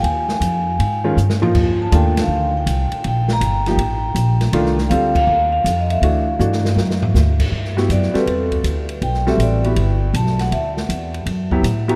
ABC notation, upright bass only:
X:1
M:4/4
L:1/8
Q:"Swing" 1/4=160
K:Fm
V:1 name="Upright bass" clef=bass
E,,2 F,,2 A,,2 G,,2 | F,,2 E,,2 =D,,2 C,, z | B,,,2 G,,,2 =A,,,2 B,,,2 | C,,2 =D,,2 E,,2 F,,2 |
=D,,2 G,,2 ^F,,2 D,,2 | [K:G] G,,2 F,, z E,,2 D,,2 | B,,,2 A,,,2 G,,,2 B,,,2 | D,,2 E,,2 F,,2 A,,2 |]